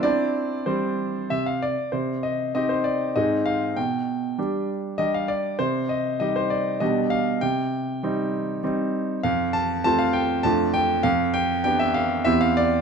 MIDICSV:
0, 0, Header, 1, 2, 480
1, 0, Start_track
1, 0, Tempo, 631579
1, 27, Time_signature, 3, 2, 24, 8
1, 1466, Tempo, 612870
1, 2906, Tempo, 606673
1, 10063, End_track
2, 0, Start_track
2, 0, Title_t, "Grand piano"
2, 0, Program_c, 0, 0
2, 0, Control_c, 0, 64, 127
2, 22, Note_on_c, 0, 74, 81
2, 27, Note_on_c, 0, 60, 51
2, 29, Note_on_c, 0, 64, 43
2, 33, Control_c, 0, 64, 0
2, 33, Note_on_c, 0, 62, 57
2, 165, Control_c, 0, 64, 127
2, 364, Note_off_c, 0, 60, 0
2, 413, Note_off_c, 0, 64, 0
2, 481, Note_off_c, 0, 62, 0
2, 502, Note_on_c, 0, 72, 56
2, 505, Note_off_c, 0, 74, 0
2, 507, Note_on_c, 0, 55, 49
2, 511, Note_on_c, 0, 60, 39
2, 843, Note_off_c, 0, 55, 0
2, 989, Note_on_c, 0, 76, 65
2, 992, Note_on_c, 0, 48, 48
2, 998, Control_c, 0, 64, 0
2, 1109, Note_off_c, 0, 76, 0
2, 1112, Note_on_c, 0, 77, 61
2, 1200, Note_off_c, 0, 60, 0
2, 1226, Note_off_c, 0, 72, 0
2, 1231, Note_off_c, 0, 77, 0
2, 1235, Note_on_c, 0, 74, 68
2, 1326, Note_off_c, 0, 48, 0
2, 1460, Note_on_c, 0, 72, 52
2, 1467, Note_on_c, 0, 48, 50
2, 1469, Note_off_c, 0, 74, 0
2, 1612, Control_c, 0, 64, 127
2, 1702, Note_on_c, 0, 75, 59
2, 1703, Note_off_c, 0, 72, 0
2, 1933, Note_off_c, 0, 48, 0
2, 1939, Note_off_c, 0, 75, 0
2, 1951, Note_on_c, 0, 75, 71
2, 1954, Note_on_c, 0, 60, 36
2, 1957, Note_on_c, 0, 63, 37
2, 1961, Note_on_c, 0, 67, 42
2, 2063, Note_on_c, 0, 72, 56
2, 2068, Note_off_c, 0, 75, 0
2, 2180, Note_on_c, 0, 74, 62
2, 2184, Note_off_c, 0, 72, 0
2, 2397, Note_off_c, 0, 60, 0
2, 2399, Note_off_c, 0, 63, 0
2, 2401, Note_off_c, 0, 67, 0
2, 2422, Note_off_c, 0, 74, 0
2, 2427, Note_on_c, 0, 75, 70
2, 2430, Control_c, 0, 64, 0
2, 2430, Note_on_c, 0, 44, 48
2, 2430, Note_on_c, 0, 60, 36
2, 2435, Note_on_c, 0, 63, 36
2, 2439, Note_on_c, 0, 68, 36
2, 2570, Control_c, 0, 64, 127
2, 2662, Note_on_c, 0, 77, 68
2, 2666, Note_off_c, 0, 75, 0
2, 2877, Note_off_c, 0, 60, 0
2, 2879, Note_off_c, 0, 63, 0
2, 2881, Note_off_c, 0, 68, 0
2, 2894, Note_off_c, 0, 44, 0
2, 2904, Note_off_c, 0, 77, 0
2, 2904, Note_on_c, 0, 79, 68
2, 2908, Note_on_c, 0, 47, 51
2, 2914, Control_c, 0, 64, 0
2, 3060, Control_c, 0, 64, 127
2, 3376, Note_off_c, 0, 47, 0
2, 3394, Note_on_c, 0, 55, 37
2, 3397, Control_c, 0, 64, 0
2, 3398, Note_on_c, 0, 62, 39
2, 3401, Note_on_c, 0, 67, 39
2, 3630, Note_off_c, 0, 79, 0
2, 3843, Note_off_c, 0, 55, 0
2, 3844, Note_off_c, 0, 62, 0
2, 3846, Note_off_c, 0, 67, 0
2, 3865, Note_on_c, 0, 75, 75
2, 3873, Note_on_c, 0, 55, 39
2, 3874, Note_on_c, 0, 62, 37
2, 3877, Note_on_c, 0, 67, 42
2, 3989, Note_off_c, 0, 75, 0
2, 3995, Note_on_c, 0, 77, 55
2, 4105, Note_on_c, 0, 74, 68
2, 4114, Note_off_c, 0, 77, 0
2, 4323, Note_off_c, 0, 55, 0
2, 4324, Note_off_c, 0, 62, 0
2, 4325, Note_off_c, 0, 67, 0
2, 4346, Note_on_c, 0, 72, 70
2, 4350, Note_off_c, 0, 74, 0
2, 4351, Note_on_c, 0, 48, 54
2, 4528, Control_c, 0, 64, 127
2, 4587, Note_on_c, 0, 75, 61
2, 4591, Note_off_c, 0, 72, 0
2, 4817, Note_off_c, 0, 75, 0
2, 4819, Note_off_c, 0, 48, 0
2, 4829, Note_on_c, 0, 75, 70
2, 4836, Note_on_c, 0, 55, 36
2, 4839, Note_on_c, 0, 63, 38
2, 4843, Note_on_c, 0, 67, 43
2, 4952, Note_off_c, 0, 75, 0
2, 4955, Note_on_c, 0, 72, 60
2, 5070, Note_on_c, 0, 74, 66
2, 5075, Note_off_c, 0, 72, 0
2, 5284, Note_off_c, 0, 55, 0
2, 5285, Note_off_c, 0, 63, 0
2, 5287, Note_off_c, 0, 67, 0
2, 5308, Note_on_c, 0, 75, 69
2, 5312, Note_off_c, 0, 74, 0
2, 5314, Note_on_c, 0, 47, 53
2, 5316, Note_on_c, 0, 55, 41
2, 5318, Note_on_c, 0, 62, 41
2, 5325, Control_c, 0, 64, 0
2, 5327, Note_on_c, 0, 67, 42
2, 5475, Control_c, 0, 64, 127
2, 5544, Note_on_c, 0, 77, 74
2, 5551, Note_off_c, 0, 75, 0
2, 5763, Note_off_c, 0, 55, 0
2, 5764, Note_off_c, 0, 62, 0
2, 5768, Note_off_c, 0, 67, 0
2, 5779, Note_off_c, 0, 47, 0
2, 5789, Note_off_c, 0, 77, 0
2, 5790, Note_on_c, 0, 79, 78
2, 5797, Note_on_c, 0, 48, 55
2, 5802, Control_c, 0, 64, 0
2, 5928, Control_c, 0, 64, 127
2, 6257, Note_off_c, 0, 48, 0
2, 6280, Note_on_c, 0, 55, 41
2, 6284, Note_on_c, 0, 63, 47
2, 6285, Note_on_c, 0, 60, 42
2, 6506, Note_off_c, 0, 79, 0
2, 6720, Note_off_c, 0, 55, 0
2, 6722, Note_off_c, 0, 60, 0
2, 6722, Note_off_c, 0, 63, 0
2, 6754, Control_c, 0, 64, 0
2, 6758, Note_on_c, 0, 55, 42
2, 6762, Note_on_c, 0, 60, 44
2, 6763, Note_on_c, 0, 63, 47
2, 7200, Note_off_c, 0, 55, 0
2, 7202, Note_off_c, 0, 60, 0
2, 7202, Note_off_c, 0, 63, 0
2, 7231, Note_on_c, 0, 77, 79
2, 7237, Note_on_c, 0, 41, 63
2, 7393, Control_c, 0, 64, 127
2, 7467, Note_off_c, 0, 77, 0
2, 7467, Note_on_c, 0, 81, 82
2, 7694, Note_off_c, 0, 41, 0
2, 7701, Note_off_c, 0, 81, 0
2, 7713, Note_on_c, 0, 81, 95
2, 7717, Note_on_c, 0, 57, 43
2, 7722, Note_on_c, 0, 60, 46
2, 7727, Note_on_c, 0, 65, 50
2, 7826, Note_on_c, 0, 77, 78
2, 7827, Note_off_c, 0, 81, 0
2, 7942, Note_on_c, 0, 79, 78
2, 7944, Note_off_c, 0, 77, 0
2, 8158, Note_off_c, 0, 57, 0
2, 8160, Note_off_c, 0, 60, 0
2, 8163, Note_off_c, 0, 65, 0
2, 8180, Note_on_c, 0, 81, 86
2, 8183, Note_off_c, 0, 79, 0
2, 8188, Note_on_c, 0, 41, 61
2, 8189, Control_c, 0, 64, 0
2, 8189, Note_on_c, 0, 57, 48
2, 8190, Note_on_c, 0, 62, 44
2, 8198, Note_on_c, 0, 65, 44
2, 8327, Control_c, 0, 64, 127
2, 8419, Note_on_c, 0, 79, 86
2, 8423, Note_off_c, 0, 81, 0
2, 8636, Note_off_c, 0, 57, 0
2, 8637, Note_off_c, 0, 62, 0
2, 8640, Note_off_c, 0, 65, 0
2, 8646, Note_off_c, 0, 41, 0
2, 8654, Note_on_c, 0, 77, 89
2, 8658, Note_on_c, 0, 41, 69
2, 8662, Note_off_c, 0, 79, 0
2, 8672, Control_c, 0, 64, 0
2, 8802, Control_c, 0, 64, 127
2, 8895, Note_on_c, 0, 79, 88
2, 8899, Note_off_c, 0, 77, 0
2, 9123, Note_off_c, 0, 79, 0
2, 9127, Note_off_c, 0, 41, 0
2, 9135, Note_on_c, 0, 79, 88
2, 9141, Note_on_c, 0, 59, 46
2, 9144, Note_on_c, 0, 62, 46
2, 9149, Note_on_c, 0, 67, 54
2, 9256, Note_on_c, 0, 76, 73
2, 9259, Note_off_c, 0, 79, 0
2, 9375, Note_on_c, 0, 77, 76
2, 9380, Note_off_c, 0, 76, 0
2, 9591, Note_off_c, 0, 59, 0
2, 9592, Note_off_c, 0, 62, 0
2, 9595, Note_off_c, 0, 67, 0
2, 9613, Note_on_c, 0, 76, 88
2, 9617, Note_on_c, 0, 60, 48
2, 9618, Note_on_c, 0, 40, 65
2, 9619, Note_off_c, 0, 77, 0
2, 9623, Note_on_c, 0, 64, 49
2, 9628, Note_on_c, 0, 67, 51
2, 9635, Control_c, 0, 64, 0
2, 9739, Note_off_c, 0, 76, 0
2, 9741, Note_on_c, 0, 77, 83
2, 9759, Control_c, 0, 64, 127
2, 9863, Note_off_c, 0, 77, 0
2, 9869, Note_on_c, 0, 74, 83
2, 10063, Note_off_c, 0, 40, 0
2, 10063, Note_off_c, 0, 60, 0
2, 10063, Note_off_c, 0, 64, 0
2, 10063, Note_off_c, 0, 67, 0
2, 10063, Note_off_c, 0, 74, 0
2, 10063, End_track
0, 0, End_of_file